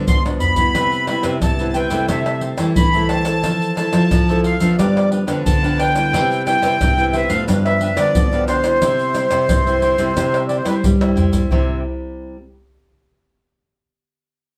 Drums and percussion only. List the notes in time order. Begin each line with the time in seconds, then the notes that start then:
0.08 pandeiro, maracas, surdo
0.26 pandeiro, tamborim, maracas
0.40 surdo, pandeiro, maracas
0.56 pandeiro, maracas, surdo
0.75 pandeiro, tamborim, maracas, surdo
0.92 pandeiro, maracas
1.07 pandeiro, tamborim
1.23 pandeiro, tamborim, maracas
1.42 pandeiro, tamborim, maracas, surdo
1.59 pandeiro, maracas
1.74 pandeiro, maracas
1.90 pandeiro, maracas
2.08 pandeiro, tamborim, maracas, surdo
2.26 pandeiro, tamborim, maracas
2.41 pandeiro
2.58 pandeiro, tamborim, maracas
2.76 pandeiro, maracas, surdo
2.94 pandeiro, maracas
3.09 pandeiro, tamborim
3.25 pandeiro, tamborim, maracas
3.44 pandeiro, tamborim, maracas, surdo
3.62 pandeiro, maracas
3.77 pandeiro, tamborim, maracas
3.93 pandeiro, tamborim, maracas
4.11 pandeiro, tamborim, maracas, surdo
4.29 pandeiro, maracas
4.44 pandeiro
4.60 pandeiro, maracas
4.79 pandeiro, tamborim, maracas, surdo
4.97 pandeiro, tamborim, maracas
5.12 pandeiro
5.28 pandeiro, tamborim, maracas
5.46 pandeiro, maracas, surdo
5.64 pandeiro, maracas
5.80 pandeiro, tamborim
5.95 pandeiro, tamborim, maracas
6.14 pandeiro, tamborim, maracas, surdo
6.32 pandeiro, maracas
6.47 pandeiro, tamborim, maracas
6.63 pandeiro, tamborim, maracas
6.81 pandeiro, tamborim, maracas, surdo
6.98 pandeiro, maracas
7.13 pandeiro
7.30 pandeiro, maracas
7.48 pandeiro, tamborim, maracas, surdo
7.66 pandeiro, tamborim, maracas
7.81 pandeiro
7.97 pandeiro, tamborim, maracas
8.15 pandeiro, maracas, surdo
8.33 pandeiro, maracas
8.48 pandeiro, tamborim, maracas
8.64 pandeiro, tamborim, maracas
8.82 pandeiro, tamborim, maracas, surdo
8.99 pandeiro, maracas
9.14 pandeiro, tamborim, maracas
9.31 pandeiro, tamborim, maracas
9.49 pandeiro, tamborim, maracas, surdo
9.67 pandeiro, maracas
9.82 pandeiro
9.98 pandeiro, maracas
10.17 pandeiro, tamborim, maracas, surdo
10.34 pandeiro, tamborim, maracas
10.49 pandeiro
10.65 pandeiro, tamborim, maracas
10.84 pandeiro, maracas, surdo
11.01 pandeiro, tamborim, maracas
11.17 surdo, pandeiro
11.33 pandeiro, maracas, surdo
11.51 surdo